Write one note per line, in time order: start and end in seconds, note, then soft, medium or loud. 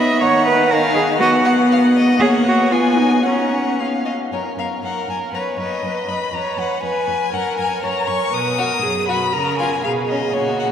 0.00 0.23 B3 medium
0.00 0.21 D#5 loud
0.00 0.24 E5 medium
0.00 0.22 B5 medium
0.21 1.22 D#3 medium
0.21 0.46 C#5 loud
0.21 0.74 F#5 medium
0.21 0.71 A#5 medium
0.46 0.72 B4 loud
0.70 0.94 A#4 loud
0.70 1.21 F5 medium
0.70 1.19 G#5 medium
0.95 1.03 G#4 loud
1.19 2.19 B3 medium
1.19 1.45 F#4 loud
1.19 1.29 D#5 medium
1.19 2.18 F#5 medium
1.45 1.53 F#5 medium
1.72 1.80 F5 medium
1.96 2.23 D#5 medium
2.20 2.73 A#3 medium
2.20 2.28 G#4 loud
2.20 2.73 C#5 medium
2.20 2.74 F#5 medium
2.46 2.73 F#4 medium
2.72 3.27 B3 medium
2.72 3.00 F4 medium
2.72 3.25 G#5 medium
2.72 3.28 G#5 medium
2.98 3.24 D#4 medium
3.23 3.78 C#4 medium
3.23 3.79 C#4 medium
3.23 3.81 F#5 medium
3.23 3.79 A#5 medium
3.79 3.88 C#4 soft
3.79 3.87 F5 medium
3.79 4.12 F5 soft
4.05 4.13 D#5 medium
4.32 4.40 F#2 soft
4.32 4.57 A#4 soft
4.32 4.41 C#5 medium
4.56 4.64 F#2 soft
4.56 4.83 A#4 soft
4.56 4.67 F5 medium
4.83 4.91 F#2 soft
4.83 5.35 A#4 soft
4.83 5.07 A#4 soft
4.83 5.08 F#5 medium
5.07 5.16 F#2 soft
5.07 5.33 A#4 soft
5.07 5.17 G#5 medium
5.32 5.40 F#2 soft
5.32 5.58 B4 soft
5.32 5.86 C#5 medium
5.32 5.43 A#5 medium
5.57 5.65 F#2 soft
5.57 5.83 B4 soft
5.57 6.10 D#5 medium
5.83 5.91 F#2 soft
5.83 6.09 B4 soft
5.83 6.08 B4 soft
6.08 6.16 F#2 soft
6.08 6.32 B4 soft
6.08 6.17 D#5 soft
6.08 6.35 B5 medium
6.32 6.40 F2 medium
6.32 6.58 B4 soft
6.32 6.83 C#5 medium
6.32 6.61 A#5 medium
6.57 6.65 F2 soft
6.57 6.83 B4 soft
6.57 6.83 F#5 medium
6.82 6.90 F2 soft
6.82 7.32 B4 medium
6.82 7.08 B4 soft
6.82 7.35 G#5 medium
7.08 7.16 F2 medium
7.08 7.33 B4 soft
7.33 7.41 F#2 medium
7.33 7.85 A#4 medium
7.33 7.59 A#4 soft
7.33 7.57 F#5 medium
7.58 7.66 F#2 medium
7.58 7.83 A#4 medium
7.58 7.83 G#5 medium
7.83 7.91 F#2 medium
7.83 8.08 A#4 medium
7.83 8.33 C#5 medium
7.83 8.09 A#5 medium
8.08 8.16 F#2 medium
8.08 8.33 A#4 soft
8.08 8.35 C#6 medium
8.33 8.75 B2 medium
8.33 8.60 B4 medium
8.33 9.08 D#6 medium
8.58 8.70 F#4 medium
8.58 8.84 A#4 medium
8.82 9.25 F#2 medium
8.82 9.09 G#4 medium
9.08 9.34 F#4 medium
9.08 9.20 F#4 medium
9.08 9.34 B5 medium
9.33 9.76 C#3 medium
9.33 9.85 A#4 medium
9.33 9.58 A#5 medium
9.59 9.71 F4 medium
9.59 9.83 G#5 medium
9.83 10.27 B2 medium
9.83 10.72 G#4 medium
9.83 9.91 F5 medium
10.08 10.22 C#4 soft
10.08 10.35 D#5 medium
10.34 10.72 A#2 medium
10.34 10.72 F#4 medium
10.34 10.59 C#5 medium
10.59 10.67 F#5 medium